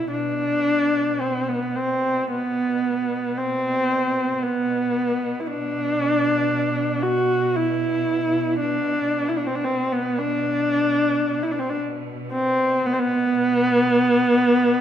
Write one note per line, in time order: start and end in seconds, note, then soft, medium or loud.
0.00 0.11 E4 medium
0.10 14.81 B2 soft
0.10 1.22 D4 medium
1.21 1.50 C4 medium
1.49 1.78 B3 medium
1.76 2.30 C4 medium
2.32 3.39 B3 medium
3.38 4.45 C4 medium
4.43 5.42 B3 medium
5.40 5.49 E4 soft
5.47 7.04 D4 medium
7.03 7.57 F#4 medium
7.56 8.59 E4 medium
8.60 9.30 D4 medium
9.29 9.39 E4 medium
9.37 9.49 D4 medium
9.47 9.57 C4 medium
9.56 9.67 D4 medium
9.65 9.94 C4 medium
9.93 10.20 B3 medium
10.19 11.45 D4 medium
11.43 11.53 E4 medium
11.52 11.61 D4 medium
11.60 11.72 C4 medium
11.70 11.79 D4 medium
12.32 12.88 C4 medium
12.86 12.95 B3 medium
12.94 13.01 C4 medium
13.00 14.81 B3 medium